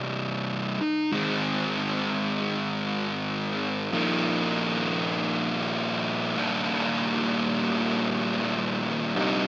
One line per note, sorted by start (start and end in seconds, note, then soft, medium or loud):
0.00 0.77 C2 medium
0.00 0.77 G2 medium
0.00 0.78 C3 medium
0.00 0.78 G3 medium
0.00 1.14 D#4 medium
1.12 3.90 G#2 medium
1.12 3.90 D#3 medium
1.12 3.91 G#3 medium
1.12 3.91 C4 medium
1.12 3.94 D#4 medium
1.12 3.91 G#4 medium
3.93 6.35 A#2 medium
3.93 6.35 F3 medium
3.93 6.35 A#3 medium
3.93 6.38 D#4 medium
3.93 6.36 F4 medium
3.93 6.36 A#4 medium
6.37 9.14 D#2 medium
6.37 9.14 A#2 medium
6.37 9.14 D#3 medium
6.37 9.14 G3 medium
6.37 9.15 A#3 medium
6.37 9.15 D4 medium
9.15 9.47 C2 medium
9.15 9.47 G2 medium
9.15 9.47 C3 medium
9.15 9.47 G3 medium
9.15 9.47 D#4 medium